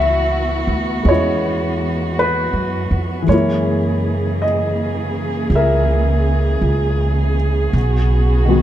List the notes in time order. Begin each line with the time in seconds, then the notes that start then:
Already playing: C#2 E3 B3 E4 F#4 E5 G#5
0.67 D2
1.03 E2 E3 G#3 C#4 D#5
1.09 E4 C#5
2.19 B4
2.53 F#2
2.91 F2
3.22 E3
3.26 F#2 C#3 G#3 A#3 G#4 C#5
3.31 E4 A#4
4.42 D#5
5.50 C#2
5.55 A#4 E5
6.62 C#2
7.72 B1 B3 F#4
8.45 D#3 G#3 B3
8.50 F#4